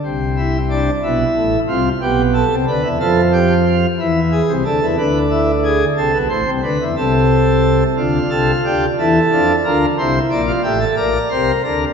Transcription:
<<
  \new Staff \with { instrumentName = "Pipe organ" } { \time 12/8 \key d \minor \tempo 4. = 60 << { r1. | r1. | r8 a'8 g'8 a'4 bes'8 c''8 d''8 e''8 d''8 c''8 bes'8 | } \\ { r8 e'8 d'8 e'4 f'8 g'8 a'8 b'8 a'8 g'8 f'8 | e'8 gis'8 a'8 b'8 e'8 gis'8 a'8 c''8 b'8 a'4. | f'4. e'8 d'8 f'8 e'8. f'16 g'16 a'16 bes'4. | } >> }
  \new Staff \with { instrumentName = "Pipe organ" } { \clef bass \time 12/8 \key d \minor <c, c>4. <b,, b,>8 <a,, a,>8 <c, c>8 <b,, b,>8. <c, c>16 <d, d>16 <e, e>16 <f, f>4. | <e, e>8. <c, c>16 <d, d>16 <e, e>16 <d, d>4. <c, c>16 <b,, b,>16 <a,, a,>16 <c, c>16 <d, d>16 <e, e>16 <c, c>4. | <d, d>8 <c, c>8 <d, d>8 <e, e>8 <f, f>8 <d, d>8 <c, c>8 <bes,, bes,>8 <a,, a,>8 <bes,, bes,>8 <c, c>8 <d, d>8 | }
>>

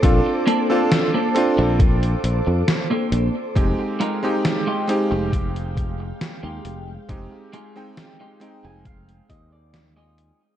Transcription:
<<
  \new Staff \with { instrumentName = "String machine" } { \time 4/4 \key f \mixolydian \tempo 4 = 68 <a' c'' d'''>1 | <aes f'' g''>1~ | <aes f'' g''>1 | }
  \new Staff \with { instrumentName = "Clean electric guitar" } { \time 4/4 \key f \mixolydian << { r1 | r1 | r4. g''16 aes''16 f''8 ees''16 d''16 d''16 ees''8. | } \\ { r8 <bes c' d' a'>8 r16 <bes c' d' a'>16 r4. r16 <bes c' d' a'>8 r16 | r8 <aes ees' f' bes'>8 r16 <aes ees' f' g'>16 r4. r16 <aes ees' f' g'>8 r16 | r8 <aes ees' f' aes'>8 r16 <aes ees' f' g'>16 r4. r16 <aes ees' f' aes'>8 r16 | } >> }
  \new Staff \with { instrumentName = "Electric grand piano" } { \time 4/4 \key f \mixolydian <c' d' f' a'>8. <c' d' f' a'>8. <c' d' f' a'>2~ <c' d' f' a'>8 | <aes c' ees' g'>8. <aes c' ees' g'>8. <aes c' ees' g'>2~ <aes c' ees' g'>8 | <aes c' ees' g'>8. <aes c' ees' g''>8. <aes c' ees'>2~ <aes c' ees'>8 | }
  \new Staff \with { instrumentName = "Fingered electric bass" } { \clef bass \time 4/4 \key f \mixolydian bes,,16 r4. bes,,8. bes,,16 f,16 r8 bes,,16 r16 | f,,16 r4. f,,4~ f,,16 r16 ees,16 f,,16 r16 | f,,16 r4. f,,8. ees,4~ ees,16 r16 | }
  \new DrumStaff \with { instrumentName = "Drums" } \drummode { \time 4/4 <hh bd>8 hh8 <hh sn>8 hh8 <hh bd>16 hh16 hh8 <hh sn>8 hh8 | <hh bd>8 hh8 <hh sn>8 hh8 <hh bd>16 hh16 <hh bd>8 <hh sn>8 hh8 | <hh bd>8 hh8 <hh sn>8 hh8 <hh bd>16 hh16 <hh bd>8 <hh sn>8 hh8 | }
>>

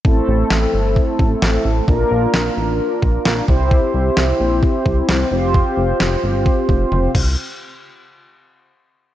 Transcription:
<<
  \new Staff \with { instrumentName = "Analog polysynth" } { \time 4/4 \key a \phrygian \tempo 4 = 131 <a c' e' a'>1 | <bes d' f' bes'>2.~ <bes d' f' bes'>8 <c' e' g' c''>8~ | <c' e' g' c''>2.~ <c' e' g' c''>8 <c' f' g' c''>8~ | <c' f' g' c''>2.~ <c' f' g' c''>8 r8 |
r1 | }
  \new Staff \with { instrumentName = "Analog synth bass" } { \clef bass \time 4/4 \key a \phrygian a,,8 a,,8 a,,8 g,,8. r16 a,,8 a,,8 a,,8 | bes,,8 bes,,8 bes,,8 a,,8. r16 bes,,8 bes,,8 c,8~ | c,8 c,8 c,8 bes,,8. r16 c,8 c,8 f,,8~ | f,,8 f,,8 f,,8 g,,8. r16 f,,8 f,,8 c,8 |
r1 | }
  \new DrumStaff \with { instrumentName = "Drums" } \drummode { \time 4/4 bd4 sn4 bd8 bd8 sn4 | bd4 sn4 r8 bd8 sn8 bd8 | bd4 sn4 bd8 bd8 sn4 | bd4 sn4 bd8 bd8 tommh8 <cymc bd>8 |
r4 r4 r4 r4 | }
>>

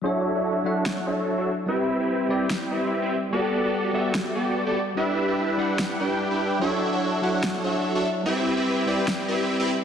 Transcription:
<<
  \new Staff \with { instrumentName = "Supersaw synth" } { \time 4/4 \key d \major \tempo 4 = 146 <d' fis' a' cis'' e''>8. <d' fis' a' cis'' e''>8. <d' fis' a' cis'' fis''>4 <d' fis' a' cis'' e''>8. <d' fis' a' cis'' e''>16 r8 | <c' e' g' b' e''>8. <c' e' g' b' e''>8. <c' e' g' b' g''>4 <c' e' g' b' e''>8. <c' e' g' b' e''>16 r8 | <b fis' g' a' d''>8. <b fis' g' a' d''>8. <b fis' g' a' e''>4 <b fis' g' a' d''>8. <b fis' g' a' d''>16 r8 | <d' e' g' b' e''>8. <d' e' g' b' e''>8. <d' e' g' b' fis''>4 <d' e' g' b' g''>8. <d' e' g' b' g''>8. |
<d' fis' a' cis'' e''>8. <d' fis' a' cis'' e''>8. <d' fis' a' cis'' fis''>4 <d' fis' a' cis'' e''>8. <d' fis' a' cis'' e''>16 r8 | <c' e' g' b' e''>8. <c' e' g' b' e''>8. <c' e' g' b' g''>4 <c' e' g' b' e''>8. <c' e' g' b' e''>16 r8 | }
  \new Staff \with { instrumentName = "Tine electric piano" } { \time 4/4 \key d \major <fis d' e' cis''>4. <fis d' e' e''>8 r2 | <g c' e' b'>4. <g c' e' d''>8 r2 | <g b fis' a'>4. <g b fis' d''>8 r2 | <g d' e' b'>4. <g d' e' d''>8 r2 |
<fis d' e' cis''>4. <fis d' e' e''>8 r2 | <g c' e' b'>4. <g c' e' d''>8 r2 | }
  \new DrumStaff \with { instrumentName = "Drums" } \drummode { \time 4/4 r4 r4 sn4 r4 | r4 r4 sn4 r4 | r4 r4 sn4 r4 | r4 r4 sn4 r4 |
r4 r4 sn4 r4 | r4 r4 sn4 r4 | }
>>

